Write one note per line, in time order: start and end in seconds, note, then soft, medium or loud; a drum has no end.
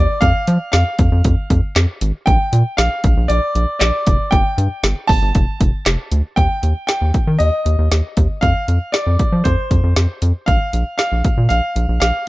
0.00 0.22 D5 medium
0.21 0.32 F2 loud
0.21 0.70 F5 loud
0.21 kick loud
0.21 closed hi-hat medium
0.47 0.58 F3 loud
0.47 closed hi-hat medium
0.72 0.84 F2 loud
0.72 1.71 F5 medium
0.72 snare loud
0.72 closed hi-hat medium
0.99 1.09 F2 loud
0.99 kick loud
0.99 closed hi-hat medium
1.12 1.22 F2 loud
1.24 1.35 F2 loud
1.24 kick medium
1.24 closed hi-hat medium
1.50 1.61 F2 loud
1.50 kick medium
1.50 closed hi-hat medium
1.76 1.86 F2 loud
1.76 snare loud
1.76 clap medium
1.76 closed hi-hat medium
2.01 2.12 G#1 loud
2.01 closed hi-hat medium
2.26 2.38 A#1 loud
2.26 2.79 G5 loud
2.26 kick loud
2.26 closed hi-hat medium
2.53 2.63 A#2 loud
2.53 closed hi-hat medium
2.77 2.89 A#1 loud
2.77 3.31 F5 medium
2.77 snare loud
2.77 closed hi-hat medium
3.04 3.15 A#1 loud
3.04 kick loud
3.04 closed hi-hat medium
3.17 3.27 A#1 loud
3.28 3.40 A#1 loud
3.28 3.78 D5 loud
3.28 closed hi-hat medium
3.55 3.66 A#1 loud
3.55 closed hi-hat medium
3.79 3.91 A#1 loud
3.79 4.33 D5 medium
3.79 snare loud
3.79 clap medium
3.79 closed hi-hat medium
4.07 4.17 F1 loud
4.07 kick medium
4.07 closed hi-hat loud
4.31 4.43 G1 loud
4.31 5.11 G5 loud
4.31 kick loud
4.31 closed hi-hat medium
4.58 4.68 G2 loud
4.58 closed hi-hat medium
4.83 4.94 G1 loud
4.83 snare loud
4.83 closed hi-hat medium
5.07 5.20 G1 loud
5.07 6.07 A5 loud
5.07 kick loud
5.07 open hi-hat medium
5.22 5.32 G1 loud
5.35 5.45 F1 loud
5.35 kick medium
5.35 closed hi-hat medium
5.61 5.71 F1 loud
5.61 kick medium
5.61 closed hi-hat medium
5.86 5.96 F1 loud
5.86 snare loud
5.86 clap medium
5.86 closed hi-hat medium
6.12 6.22 D2 medium
6.12 closed hi-hat medium
6.36 6.48 D#2 loud
6.36 6.86 G5 loud
6.36 kick loud
6.36 closed hi-hat medium
6.63 6.73 D#2 loud
6.63 closed hi-hat medium
6.87 7.41 G5 medium
6.87 snare loud
6.87 closed hi-hat medium
7.01 7.12 D#2 medium
7.14 kick medium
7.14 closed hi-hat medium
7.27 7.38 D#3 loud
7.39 7.50 D#2 loud
7.39 8.45 D#5 medium
7.39 closed hi-hat medium
7.66 7.76 D#2 loud
7.66 closed hi-hat medium
7.79 7.89 D#2 loud
7.91 8.02 D#2 loud
7.91 snare loud
7.91 closed hi-hat medium
8.17 8.28 D#2 loud
8.17 kick medium
8.17 closed hi-hat medium
8.41 8.53 F2 loud
8.41 8.95 F5 loud
8.41 kick loud
8.41 closed hi-hat medium
8.68 8.79 F2 loud
8.68 closed hi-hat medium
8.92 9.46 D5 medium
8.92 snare loud
8.92 closed hi-hat medium
9.07 9.17 F2 loud
9.19 kick loud
9.19 closed hi-hat medium
9.32 9.43 F3 medium
9.44 9.56 F2 loud
9.44 10.17 C5 medium
9.44 kick medium
9.44 closed hi-hat medium
9.71 9.81 F2 loud
9.71 kick medium
9.71 closed hi-hat medium
9.83 9.94 F2 loud
9.96 10.07 F2 loud
9.96 snare loud
9.96 closed hi-hat medium
10.22 10.33 F2 loud
10.22 closed hi-hat medium
10.46 10.58 A#1 loud
10.46 10.96 F5 medium
10.46 kick loud
10.46 closed hi-hat medium
10.73 10.84 A#1 loud
10.73 closed hi-hat medium
10.98 11.47 F5 medium
10.98 snare loud
10.98 closed hi-hat medium
11.12 11.22 A#1 medium
11.24 kick loud
11.24 closed hi-hat medium
11.37 11.48 A#2 medium
11.49 11.61 A#1 loud
11.49 11.99 F5 loud
11.49 closed hi-hat medium
11.76 11.86 A#1 loud
11.76 closed hi-hat medium
11.89 11.99 A#1 loud
12.00 12.12 A#1 loud
12.00 12.28 F5 medium
12.00 snare loud
12.00 closed hi-hat medium